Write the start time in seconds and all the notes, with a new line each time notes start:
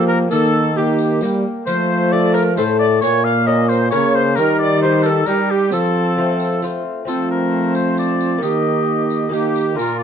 Already playing: F3 A#3 G4
0.07 A#4
0.30 D#3 A#3 A4 A#4, tambourine
0.75 A#3 G4
0.99 tambourine
1.21 G3 A#3 G4, tambourine
1.66 F3 A3 C5, tambourine
2.12 A3 A4 D5
2.33 A#4, tambourine
2.56 A2 A3 A4 C5, tambourine
2.79 D5
3.01 A#2 A#3 C#5, tambourine
3.24 F5
3.47 C#4 A#4 D#5
3.69 C5, tambourine
3.90 C#3 A#3 C#4 A#4 C#5, tambourine
4.15 C5
4.35 D#3 G3 A#4, tambourine
4.58 D5
4.82 D#4 G4 C5
5.03 A4 A#4, tambourine
5.10 A4
5.26 G3 D#4 G4 A#4, tambourine
5.51 G4
5.70 F3 C4 A4, tambourine
6.17 A3 C4 F4
6.40 tambourine
6.62 A3 C4 F4, tambourine
7.05 F3 A3 C4 F4 A4, tambourine
7.09 F3
7.31 A#4
7.75 C5, tambourine
7.97 D5, tambourine
8.21 tambourine
8.38 D#3 A#3 D#4 G4
8.43 D#3 A#3 G4 D#5, tambourine
9.10 tambourine
9.29 A#3 D#4 G4
9.33 G4, tambourine
9.55 tambourine
9.74 A#2 A#3 F4 A#4
9.79 A#2, tambourine
9.99 D5